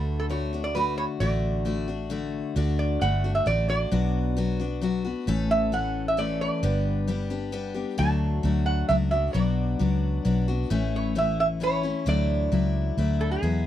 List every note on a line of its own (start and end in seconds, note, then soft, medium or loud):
0.00 1.05 D2 medium
0.00 0.29 D3 medium
0.00 0.30 A3 medium
0.00 0.30 D4 medium
0.00 0.31 F#4 medium
0.00 0.18 A4 medium
0.20 0.24 A4 medium
0.30 0.52 D3 medium
0.30 0.53 A3 medium
0.30 0.53 D4 medium
0.30 0.52 F#4 medium
0.30 0.65 C#5 medium
0.53 0.74 A3 soft
0.53 0.75 D4 medium
0.53 0.75 F#4 medium
0.64 0.74 D5 medium
0.75 1.20 D3 medium
0.75 1.20 A3 medium
0.75 1.21 D4 medium
0.75 1.21 F#4 medium
0.75 0.97 B4 medium
0.98 1.04 C#5 medium
1.20 2.41 A1 medium
1.20 1.64 D3 medium
1.20 1.64 A3 medium
1.20 1.65 D4 medium
1.20 1.66 F#4 medium
1.20 2.07 D5 medium
1.65 1.88 D3 medium
1.65 1.88 A3 medium
1.65 1.88 D4 medium
1.65 1.86 F#4 medium
1.88 2.09 A3 soft
1.88 2.10 D4 soft
1.88 2.11 F#4 soft
2.10 2.55 D3 medium
2.10 2.55 A3 medium
2.10 2.56 D4 medium
2.10 2.56 F#4 medium
2.56 2.96 D2 medium
2.56 3.00 D3 medium
2.56 3.01 A3 medium
2.56 3.02 D4 medium
2.56 3.03 F#4 medium
2.79 3.02 D5 medium
3.01 3.40 G1 medium
3.01 3.24 D3 medium
3.01 3.24 A3 medium
3.01 3.24 D4 medium
3.01 3.23 F#4 medium
3.01 3.34 F#5 medium
3.24 3.45 A3 soft
3.24 3.46 D4 soft
3.24 3.46 F#4 medium
3.35 3.45 E5 medium
3.46 3.85 A1 medium
3.46 3.69 D3 medium
3.46 3.69 A3 medium
3.46 3.69 D4 medium
3.46 3.67 F#4 medium
3.46 3.68 D5 medium
3.69 3.92 A3 soft
3.69 3.91 D4 soft
3.69 3.91 F#4 soft
3.69 4.56 D5 medium
3.92 5.13 B1 medium
3.92 4.37 B2 medium
3.92 4.35 F#3 medium
3.92 4.36 B3 medium
3.92 4.37 D4 medium
3.92 4.37 F#4 medium
4.37 4.59 F#3 medium
4.37 4.60 B3 medium
4.37 4.59 D4 medium
4.37 4.58 F#4 medium
4.60 4.81 B3 soft
4.60 4.82 D4 medium
4.60 4.82 F#4 medium
4.82 5.04 F#3 medium
4.82 5.05 B3 medium
4.82 5.04 D4 medium
4.82 5.03 F#4 medium
5.05 5.28 B3 soft
5.05 5.28 D4 soft
5.05 5.27 F#4 medium
5.27 6.48 A1 medium
5.27 5.72 A2 medium
5.27 5.71 E3 medium
5.27 5.72 A3 medium
5.27 5.72 C#4 medium
5.27 5.73 A4 loud
5.51 5.74 E5 loud
5.72 6.16 E3 medium
5.72 6.17 A3 medium
5.72 6.17 C#4 medium
5.72 6.18 A4 medium
5.72 6.08 F#5 medium
6.08 6.19 E5 medium
6.17 6.63 E3 medium
6.17 6.63 A3 medium
6.17 6.63 C#4 medium
6.17 6.64 A4 medium
6.17 6.40 D5 medium
6.41 7.27 D5 medium
6.63 7.84 G1 medium
6.63 7.08 G2 medium
6.63 7.08 D3 medium
6.63 7.06 G3 medium
6.63 7.07 B3 medium
6.63 7.08 D4 medium
6.63 7.08 G4 medium
7.08 7.30 G3 medium
7.08 7.30 B3 medium
7.08 7.29 D4 medium
7.08 7.29 G4 medium
7.30 7.51 G3 soft
7.30 7.51 B3 soft
7.30 7.52 D4 medium
7.30 7.52 G4 medium
7.52 7.75 G3 medium
7.52 7.74 B3 medium
7.52 7.74 D4 medium
7.52 7.73 G4 medium
7.74 7.97 G3 soft
7.74 7.97 B3 soft
7.74 7.97 D4 soft
7.74 7.98 G4 medium
7.98 8.39 D2 medium
7.98 8.43 D3 medium
7.98 8.43 F#3 medium
7.98 8.43 A3 medium
7.98 8.44 D4 medium
7.98 8.45 F#4 medium
7.98 8.69 A5 medium
8.43 8.82 D2 medium
8.43 8.87 F#3 medium
8.43 8.88 A3 medium
8.43 8.89 D4 medium
8.43 8.89 F#4 medium
8.66 8.87 F#5 medium
8.89 9.28 C#2 medium
8.89 9.12 F#3 medium
8.89 9.12 A3 medium
8.89 9.11 D4 medium
8.89 9.10 F#4 medium
8.89 8.95 E5 medium
9.11 9.35 A3 soft
9.11 9.34 D4 soft
9.11 9.34 F#4 soft
9.11 9.33 E5 medium
9.33 9.75 B1 medium
9.33 9.80 B2 medium
9.33 9.78 F#3 medium
9.33 9.79 B3 medium
9.33 9.80 D4 medium
9.33 9.80 F#4 medium
9.33 10.43 D5 medium
9.79 10.19 C#2 medium
9.79 10.24 F#3 medium
9.79 10.24 B3 medium
9.79 10.25 D4 medium
9.79 10.25 F#4 medium
10.25 10.64 B1 medium
10.25 10.48 F#3 medium
10.25 10.48 B3 medium
10.25 10.48 D4 medium
10.25 10.47 F#4 medium
10.48 10.70 B3 soft
10.48 10.71 D4 medium
10.48 10.70 F#4 medium
10.70 11.92 A1 medium
10.70 11.16 A2 medium
10.70 11.15 E3 medium
10.70 11.15 A3 medium
10.70 11.15 C#4 loud
10.70 11.16 E4 medium
10.96 11.18 C#5 medium
11.15 11.60 E3 medium
11.15 11.60 A3 medium
11.15 11.60 C#4 medium
11.15 11.62 E4 medium
11.15 11.39 E5 medium
11.40 11.46 E5 medium
11.60 11.83 E3 medium
11.60 11.84 A3 medium
11.60 11.83 C#4 medium
11.60 11.82 E4 medium
11.60 12.08 C#5 loud
11.83 12.06 A3 soft
11.83 12.07 C#4 soft
11.83 12.06 E4 soft
12.06 12.47 D2 medium
12.06 12.51 D3 medium
12.06 12.50 F#3 medium
12.06 12.51 A3 medium
12.06 12.52 D4 medium
12.06 12.52 E4 medium
12.06 13.17 D5 medium
12.52 12.90 C#2 medium
12.52 12.96 F#3 medium
12.52 12.97 A3 medium
12.52 12.97 D4 medium
12.52 12.98 E4 medium
12.97 13.36 D2 medium
12.97 13.42 F#3 medium
12.97 13.43 A3 medium
12.97 13.43 D4 medium
12.97 13.43 E4 medium
13.21 13.31 A4 medium
13.31 13.67 G#4 medium
13.42 13.67 E2 medium
13.42 13.67 B2 medium
13.42 13.67 F#3 medium
13.42 13.67 G#3 medium
13.42 13.67 B3 medium
13.42 13.67 E4 medium